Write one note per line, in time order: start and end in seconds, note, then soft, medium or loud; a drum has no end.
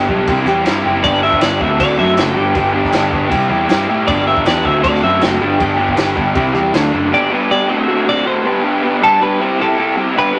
0.08 0.27 B1 medium
0.08 0.26 G2 medium
0.08 0.26 D3 medium
0.08 0.26 G3 medium
0.08 0.27 B3 medium
0.08 0.27 D4 loud
0.08 0.27 G4 loud
0.08 kick medium
0.27 0.45 C2 medium
0.27 0.45 C3 medium
0.27 0.45 G3 medium
0.27 0.46 C4 medium
0.27 0.46 E4 loud
0.27 0.47 G4 medium
0.27 kick loud
0.27 crash medium
0.45 0.64 E2 medium
0.45 0.63 C3 medium
0.45 0.64 G3 medium
0.45 0.65 C4 medium
0.45 0.65 E4 medium
0.45 0.65 G4 medium
0.45 clap medium
0.65 0.83 G2 medium
0.65 0.83 C3 medium
0.65 0.84 G3 loud
0.65 0.84 C4 loud
0.65 0.85 E4 loud
0.65 0.85 G4 loud
0.65 snare loud
0.65 clap loud
0.65 crash medium
0.84 1.02 F#1 medium
0.84 1.02 C3 medium
0.84 1.02 G3 medium
0.84 1.03 C4 medium
0.84 1.03 E4 loud
0.84 1.03 G4 medium
1.02 1.40 G1 loud
1.02 1.21 G2 loud
1.02 1.21 D3 loud
1.02 1.22 G3 loud
1.02 1.22 B3 loud
1.02 1.22 D4 loud
1.02 1.23 G4 loud
1.02 1.22 D5 loud
1.02 kick loud
1.02 crash medium
1.22 1.39 G2 medium
1.22 1.40 D3 medium
1.22 1.40 G3 medium
1.22 1.40 B3 medium
1.22 1.41 D4 medium
1.22 1.42 G4 loud
1.22 1.41 E5 medium
1.32 kick medium
1.40 1.59 G1 medium
1.40 1.59 G2 medium
1.40 1.58 D3 loud
1.40 1.59 G3 loud
1.40 1.59 B3 loud
1.40 1.60 D4 loud
1.40 1.60 G4 loud
1.40 1.61 D5 loud
1.40 snare loud
1.40 clap loud
1.40 crash medium
1.59 1.78 D2 medium
1.59 1.77 D3 medium
1.59 1.78 A3 loud
1.59 1.78 C4 loud
1.59 1.78 F#4 loud
1.59 1.79 E5 medium
1.59 kick medium
1.78 1.98 D2 medium
1.78 1.96 D3 medium
1.78 1.97 A3 loud
1.78 1.97 C4 medium
1.78 1.97 F#4 medium
1.78 1.98 D5 loud
1.78 kick loud
1.78 crash medium
1.97 2.17 F#2 medium
1.97 2.14 D3 medium
1.97 2.16 A3 medium
1.97 2.15 C4 medium
1.97 2.16 F#4 medium
1.97 2.19 E5 loud
2.15 2.35 F#1 medium
2.15 2.34 D3 loud
2.15 2.35 A3 loud
2.15 2.35 C4 loud
2.15 2.35 F#4 loud
2.15 3.29 G5 loud
2.15 snare loud
2.15 clap medium
2.15 crash medium
2.35 2.54 G1 medium
2.35 2.53 G2 loud
2.35 2.53 D3 loud
2.35 2.54 G3 loud
2.35 2.54 B3 loud
2.35 2.55 D4 loud
2.35 2.55 G4 loud
2.54 2.91 G1 loud
2.54 2.72 G2 loud
2.54 2.72 D3 loud
2.54 2.73 G3 loud
2.54 2.73 B3 loud
2.54 2.74 D4 loud
2.54 2.74 G4 loud
2.54 kick loud
2.54 crash medium
2.73 2.91 G2 medium
2.73 2.91 D3 medium
2.73 2.91 G3 medium
2.73 2.92 B3 loud
2.73 2.92 D4 loud
2.73 2.93 G4 loud
2.84 kick medium
2.84 snare soft
2.92 3.11 G1 medium
2.92 3.09 G2 loud
2.92 3.10 D3 loud
2.92 3.10 G3 loud
2.92 3.11 B3 loud
2.92 3.11 D4 medium
2.92 3.12 G4 loud
2.92 snare loud
2.92 clap loud
2.92 crash medium
3.10 3.30 G1 medium
3.10 3.29 G2 medium
3.10 3.28 D3 medium
3.10 3.28 G3 medium
3.10 3.29 B3 medium
3.10 3.30 D4 medium
3.10 3.30 G4 loud
3.10 kick medium
3.29 3.50 C2 loud
3.29 3.48 C3 medium
3.29 3.48 G3 medium
3.29 3.48 C4 loud
3.29 3.49 E4 medium
3.29 3.49 G4 loud
3.29 kick loud
3.29 crash medium
3.49 3.68 E2 medium
3.49 3.67 C3 medium
3.49 3.68 G3 medium
3.49 3.68 C4 medium
3.49 3.69 E4 medium
3.49 3.69 G4 loud
3.69 3.87 G2 medium
3.69 3.87 C3 loud
3.69 3.87 G3 medium
3.69 3.88 C4 loud
3.69 3.88 E4 loud
3.69 3.88 G4 loud
3.69 snare loud
3.69 clap loud
3.69 crash medium
3.88 4.06 A2 medium
3.88 4.06 C3 medium
3.88 4.06 G3 medium
3.88 4.07 C4 medium
3.88 4.07 E4 medium
3.88 4.07 G4 medium
4.07 4.44 G1 loud
4.07 4.25 G2 loud
4.07 4.25 D3 loud
4.07 4.25 G3 loud
4.07 4.26 B3 loud
4.07 4.26 D4 loud
4.07 4.27 G4 loud
4.07 4.26 D5 loud
4.07 kick loud
4.07 crash medium
4.26 4.44 G2 medium
4.26 4.45 D3 medium
4.26 4.45 G3 medium
4.26 4.45 B3 medium
4.26 4.45 D4 medium
4.26 4.46 G4 loud
4.26 4.45 E5 medium
4.37 kick medium
4.45 4.64 E2 medium
4.45 4.63 G2 medium
4.45 4.63 D3 medium
4.45 4.64 G3 loud
4.45 4.64 B3 loud
4.45 4.64 D4 loud
4.45 4.64 G4 loud
4.45 4.65 D5 loud
4.45 snare loud
4.45 clap loud
4.45 crash medium
4.64 4.83 D2 medium
4.64 4.82 D3 medium
4.64 4.83 A3 loud
4.64 4.83 C4 loud
4.64 4.84 F#4 loud
4.64 4.83 E5 medium
4.64 kick medium
4.83 5.02 D2 loud
4.83 5.02 D3 medium
4.83 5.03 A3 medium
4.83 5.02 C4 medium
4.83 5.03 F#4 loud
4.83 5.02 D5 loud
4.83 kick loud
4.83 crash medium
4.95 snare soft
5.03 5.21 F#2 medium
5.03 5.20 D3 medium
5.03 5.21 A3 medium
5.03 5.20 C4 medium
5.03 5.21 F#4 loud
5.03 5.23 E5 medium
5.21 5.40 F#1 medium
5.21 5.39 D3 medium
5.21 5.40 A3 loud
5.21 5.39 C4 loud
5.21 5.40 F#4 loud
5.21 6.33 G5 medium
5.21 snare loud
5.21 clap medium
5.21 crash medium
5.39 5.59 G1 medium
5.39 5.57 G2 loud
5.39 5.58 D3 loud
5.39 5.58 G3 medium
5.39 5.58 B3 loud
5.39 5.59 D4 loud
5.39 5.59 G4 loud
5.58 5.96 G1 loud
5.58 5.76 G2 loud
5.58 5.76 D3 loud
5.58 5.77 G3 loud
5.58 5.77 B3 loud
5.58 5.77 D4 loud
5.58 5.78 G4 loud
5.58 kick loud
5.58 crash medium
5.77 5.94 G2 medium
5.77 5.94 D3 medium
5.77 5.95 G3 medium
5.77 5.95 B3 loud
5.77 5.96 D4 loud
5.77 5.96 G4 loud
5.88 kick medium
5.95 6.16 G1 medium
5.95 6.13 G2 medium
5.95 6.14 D3 medium
5.95 6.15 G3 medium
5.95 6.15 B3 loud
5.95 6.16 D4 medium
5.95 6.16 G4 loud
5.95 snare loud
5.95 clap medium
5.95 crash medium
6.15 6.35 G1 medium
6.15 6.34 G2 medium
6.15 6.34 D3 medium
6.15 6.34 G3 loud
6.15 6.34 B3 medium
6.15 6.35 D4 medium
6.15 6.35 G4 loud
6.15 kick medium
6.35 6.54 C2 loud
6.35 6.52 C3 medium
6.35 6.52 G3 medium
6.35 6.53 C4 loud
6.35 6.54 E4 loud
6.35 6.54 G4 medium
6.35 kick loud
6.35 crash medium
6.53 6.73 E2 medium
6.53 6.72 C3 medium
6.53 6.72 G3 medium
6.53 6.72 C4 medium
6.53 6.73 E4 medium
6.53 6.73 G4 medium
6.53 clap medium
6.73 6.92 D2 medium
6.73 6.91 D3 medium
6.73 6.92 F#3 medium
6.73 6.92 A3 loud
6.73 6.92 D4 loud
6.73 snare loud
6.73 clap loud
6.73 crash medium
6.92 7.11 F#1 medium
6.92 7.10 D3 medium
6.92 7.11 F#3 medium
6.92 7.11 A3 medium
6.92 7.11 D4 loud
7.11 7.29 G2 medium
7.11 7.29 D3 loud
7.11 7.30 G3 loud
7.11 7.30 B3 loud
7.11 7.31 D4 loud
7.11 7.31 G4 loud
7.11 7.33 D5 loud
7.30 7.48 G2 medium
7.30 7.49 D3 medium
7.30 7.49 G3 medium
7.30 7.50 B3 medium
7.30 7.50 D4 medium
7.30 7.50 G4 loud
7.30 7.51 B4 medium
7.50 7.68 G2 medium
7.50 7.68 D3 medium
7.50 7.68 G3 medium
7.50 7.68 B3 loud
7.50 7.68 D4 loud
7.50 7.68 G4 medium
7.50 7.69 D5 medium
7.69 7.86 D3 loud
7.69 7.87 A3 medium
7.69 7.87 C4 loud
7.69 7.87 F#4 loud
7.69 8.08 E5 loud
7.87 8.05 D3 medium
7.87 8.06 A3 medium
7.87 8.06 C4 loud
7.87 8.06 F#4 medium
8.06 8.23 D3 medium
8.06 8.25 A3 medium
8.06 8.24 C4 medium
8.06 8.25 F#4 medium
8.06 8.27 D5 loud
8.24 8.43 D3 medium
8.24 8.44 A3 medium
8.24 8.43 C4 loud
8.24 8.44 F#4 loud
8.24 8.47 C5 medium
8.44 8.61 G2 loud
8.44 8.61 D3 loud
8.44 8.61 G3 medium
8.44 8.62 B3 loud
8.44 8.62 D4 loud
8.44 8.63 G4 loud
8.44 9.04 B4 loud
8.62 8.80 G2 loud
8.62 8.81 D3 loud
8.62 8.81 G3 loud
8.62 8.81 B3 loud
8.62 8.82 D4 loud
8.62 8.82 G4 loud
8.81 9.00 G2 medium
8.81 9.00 D3 medium
8.81 9.01 G3 medium
8.81 9.01 B3 medium
8.81 9.02 D4 loud
8.81 9.01 G4 loud
9.01 9.19 G2 medium
9.01 9.19 D3 loud
9.01 9.20 G3 loud
9.01 9.20 B3 loud
9.01 9.20 D4 loud
9.01 9.20 G4 loud
9.01 9.22 A4 loud
9.20 9.38 G2 medium
9.20 9.38 D3 medium
9.20 9.39 G3 loud
9.20 9.39 B3 medium
9.20 9.39 D4 loud
9.20 9.39 G4 loud
9.20 9.41 B4 medium
9.39 9.57 C3 medium
9.39 9.58 G3 medium
9.39 9.58 C4 loud
9.39 9.59 E4 loud
9.39 9.59 G4 loud
9.39 9.60 C5 loud
9.59 9.76 C3 medium
9.59 9.76 G3 medium
9.59 9.76 C4 medium
9.59 9.77 E4 medium
9.59 9.78 G4 medium
9.59 9.96 A4 loud
9.77 9.95 C3 loud
9.77 9.95 G3 loud
9.77 9.96 C4 loud
9.77 9.96 E4 loud
9.77 9.96 G4 loud
9.96 10.14 C3 medium
9.96 10.14 G3 medium
9.96 10.15 C4 loud
9.96 10.15 E4 loud
9.96 10.15 G4 medium
10.15 10.31 G2 loud
10.15 10.32 D3 loud
10.15 10.32 G3 loud
10.15 10.33 B3 loud
10.15 10.34 D4 loud
10.15 10.34 G4 loud
10.15 10.38 B4 loud
10.33 10.39 G2 loud
10.33 10.39 D3 medium
10.33 10.39 G3 loud
10.33 10.39 B3 medium
10.33 10.39 D4 loud
10.33 10.39 G4 loud